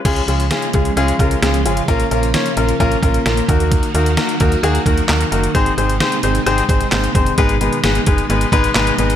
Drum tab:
CC |x---------------|----------------|----------------|----------------|
HH |xxxxxxxxxxxxxxxx|xxxxxxxxxxxxxxxx|xxxxxxxxxxxxxxxx|xxxxxxxxxxxxxxxx|
CP |----------------|----------------|------------x---|------------x---|
SD |----o-------o---|----o-------o---|----o-------o---|----o-------o---|
BD |o-----o---o-----|o-------o-o---o-|o-----o---o-----|o---------o---o-|

CC |----------------|
HH |xxxxxxxxxxxxxxxx|
CP |------------x---|
SD |----o-------o---|
BD |o-----o---o-----|